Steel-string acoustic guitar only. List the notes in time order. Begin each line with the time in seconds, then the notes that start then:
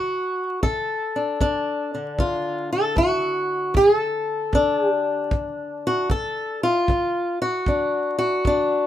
Already playing: D2 F#4
0.63 D2 A4
1.16 D4
1.41 D2 D4
1.95 D3
2.18 D2 F4
2.72 A4
2.96 D2 F#4
3.74 D2 G#4
3.97 A4
4.53 D2 D4
4.77 G#4
4.90 G4
5.31 D2
5.87 F#4
6.10 D2 A4
6.63 F4
6.89 D2
7.42 F#4
7.68 D2 D4
8.18 F#4
8.45 D2 D4